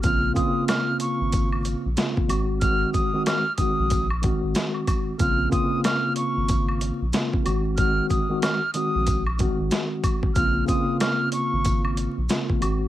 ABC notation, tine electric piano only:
X:1
M:4/4
L:1/16
Q:"Swing 16ths" 1/4=93
K:Bbm
V:1 name="Tine electric piano"
[D,B,CF]2 [D,B,CF]8- [D,B,CF] z [D,B,CF]2 [E,A,CG]2 | [E,A,CG]3 [E,A,CG]2 z [E,A,CG]3 z [E,A,CG]6 | [D,B,CF]2 [D,B,CF]8- [D,B,CF] z [D,B,CF]2 [E,A,CG]2 | [E,A,CG]3 [E,A,CG]2 z [E,A,CG]3 z [E,A,CG]6 |
[D,B,CF]2 [D,B,CF]8- [D,B,CF] z [D,B,CF]2 [E,A,CG]2 |]